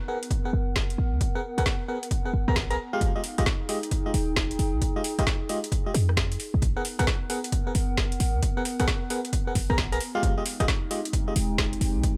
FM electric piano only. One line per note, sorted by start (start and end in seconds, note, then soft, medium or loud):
0.08 0.18 B3 medium
0.08 0.18 G#4 medium
0.08 0.18 A#4 medium
0.08 0.18 F#5 medium
0.45 0.51 B3 medium
0.45 0.51 G#4 medium
0.45 0.51 A#4 medium
0.45 0.51 F#5 medium
1.35 1.41 B3 medium
1.35 1.41 G#4 medium
1.35 1.41 A#4 medium
1.35 1.41 F#5 medium
1.58 1.63 B3 medium
1.58 1.63 G#4 medium
1.58 1.63 A#4 medium
1.58 1.63 F#5 loud
1.88 1.98 B3 medium
1.88 1.98 G#4 medium
1.88 1.98 A#4 medium
1.88 1.98 F#5 medium
2.25 2.31 B3 medium
2.25 2.31 G#4 medium
2.25 2.31 A#4 medium
2.25 2.31 F#5 medium
2.48 2.57 B3 medium
2.48 2.57 G#4 medium
2.48 2.57 A#4 medium
2.48 2.57 A#5 medium
2.70 2.76 B3 loud
2.70 2.76 G#4 medium
2.70 2.76 A#4 medium
2.70 2.76 A#5 loud
2.93 3.12 G#3 medium
2.93 3.12 F4 medium
2.93 3.12 G4 medium
2.93 3.12 F5 loud
3.16 3.21 G#3 medium
3.16 3.21 F4 medium
3.16 3.21 G4 medium
3.16 3.21 D#5 medium
3.38 3.44 G#3 medium
3.38 3.44 F4 medium
3.38 3.44 G4 medium
3.38 3.44 D#5 loud
3.69 3.79 G#3 medium
3.69 3.79 F4 medium
3.69 3.79 G4 medium
3.69 3.79 D#5 medium
4.06 4.11 G#3 medium
4.06 4.11 F4 medium
4.06 4.11 G4 medium
4.06 4.11 D#5 medium
4.96 5.02 G#3 medium
4.96 5.02 F4 medium
4.96 5.02 G4 medium
4.96 5.02 D#5 medium
5.19 5.24 G#3 medium
5.19 5.24 F4 medium
5.19 5.24 G4 medium
5.19 5.24 D#5 loud
5.49 5.59 G#3 medium
5.49 5.59 F4 medium
5.49 5.59 G4 medium
5.49 5.59 D#5 medium
5.86 5.92 G#3 medium
5.86 5.92 F4 medium
5.86 5.92 G4 medium
5.86 5.92 D#5 medium
6.76 6.82 B3 medium
6.76 6.82 G#4 medium
6.76 6.82 A#4 medium
6.76 6.82 F#5 medium
6.99 7.05 B3 medium
6.99 7.05 G#4 medium
6.99 7.05 A#4 medium
6.99 7.05 F#5 loud
7.30 7.39 B3 medium
7.30 7.39 G#4 medium
7.30 7.39 A#4 medium
7.30 7.39 F#5 medium
7.67 7.72 B3 medium
7.67 7.72 G#4 medium
7.67 7.72 A#4 medium
7.67 7.72 F#5 medium
8.57 8.62 B3 medium
8.57 8.62 G#4 medium
8.57 8.62 A#4 medium
8.57 8.62 F#5 medium
8.80 8.85 B3 medium
8.80 8.85 G#4 medium
8.80 8.85 A#4 medium
8.80 8.85 F#5 loud
9.10 9.20 B3 medium
9.10 9.20 G#4 medium
9.10 9.20 A#4 medium
9.10 9.20 F#5 medium
9.47 9.53 B3 medium
9.47 9.53 G#4 medium
9.47 9.53 A#4 medium
9.47 9.53 F#5 medium
9.70 9.79 B3 medium
9.70 9.79 G#4 medium
9.70 9.79 A#4 medium
9.70 9.79 A#5 medium
9.92 9.98 B3 loud
9.92 9.98 G#4 medium
9.92 9.98 A#4 medium
9.92 9.98 A#5 loud
10.15 10.34 G#3 medium
10.15 10.34 F4 medium
10.15 10.34 G4 medium
10.15 10.34 F5 loud
10.38 10.43 G#3 medium
10.38 10.43 F4 medium
10.38 10.43 G4 medium
10.38 10.43 D#5 medium
10.60 10.65 G#3 medium
10.60 10.66 F4 medium
10.60 10.66 G4 medium
10.60 10.65 D#5 loud
10.91 11.00 G#3 medium
10.91 11.00 F4 medium
10.91 11.00 G4 medium
10.91 11.00 D#5 medium
11.28 11.33 G#3 medium
11.28 11.33 F4 medium
11.28 11.33 G4 medium
11.28 11.33 D#5 medium